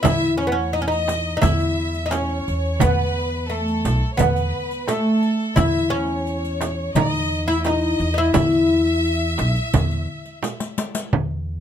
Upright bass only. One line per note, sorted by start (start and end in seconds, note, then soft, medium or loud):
0.05 1.39 E2 medium
1.43 2.43 E2 medium
2.48 2.78 E2 medium
2.83 3.82 E2 medium
3.85 4.00 B1 medium
4.20 4.51 E2 medium
5.57 6.92 E2 medium
6.95 7.96 E2 medium
8.00 8.31 E2 medium
8.35 9.35 E2 medium
9.39 9.55 B1 medium
9.75 10.05 E2 medium
11.13 11.60 E2 medium